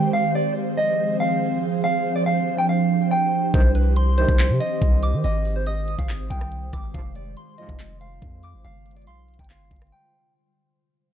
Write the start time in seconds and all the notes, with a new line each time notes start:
Already playing: D#3 G#3 G4 C5
0.13 F3 C4 G#4 C5 F5
0.35 D5
0.77 D#5
1.20 F5
1.84 D4 G4 F5
2.16 D5
2.26 F5
2.58 G5
2.69 F5
3.11 G5
3.54 C2 G2 C3 D#3 C4 C5, kick, closed hi-hat
3.75 B4, closed hi-hat
3.96 C6, closed hi-hat
4.18 G2 C3 D#3 C5, closed hi-hat
4.28 C2, kick
4.39 clap, closed hi-hat
4.50 C3
4.60 D#5, closed hi-hat
4.82 C2, kick, closed hi-hat
5.03 D6, closed hi-hat
5.14 D#3
5.24 G#1 G#3 D#5, closed hi-hat
5.45 open hi-hat
5.56 C5
5.67 D#5 D#6, closed hi-hat
5.88 closed hi-hat
5.99 G#1 F5, kick
6.09 clap, closed hi-hat
6.30 C2 G5, kick, closed hi-hat
6.41 cross-stick
6.52 closed hi-hat
6.73 G#1 D6, kick, cross-stick, closed hi-hat
6.94 F1 G#2 C3 F3 F4 F5, kick, closed hi-hat
7.16 D5, closed hi-hat
7.37 C6, closed hi-hat
7.58 G#2 C3 F3 D#5, closed hi-hat
7.69 F1, kick
7.79 clap, closed hi-hat
8.01 F5, closed hi-hat
8.22 F2, kick, closed hi-hat
8.43 D6, closed hi-hat
8.54 G#1
8.65 G1 D3 G3 F4 C5 F5, closed hi-hat
8.86 closed hi-hat, open hi-hat
8.91 closed hi-hat
8.96 D5, closed hi-hat
9.02 closed hi-hat
9.07 B1 F5 C6, closed hi-hat
9.29 closed hi-hat
9.34 closed hi-hat
9.39 G1 G5, kick, closed hi-hat
9.44 closed hi-hat
9.50 F5, clap, closed hi-hat
9.57 closed hi-hat
9.64 closed hi-hat
9.71 G1, kick, closed hi-hat
9.76 closed hi-hat
9.82 cross-stick, closed hi-hat
9.87 closed hi-hat
9.92 G5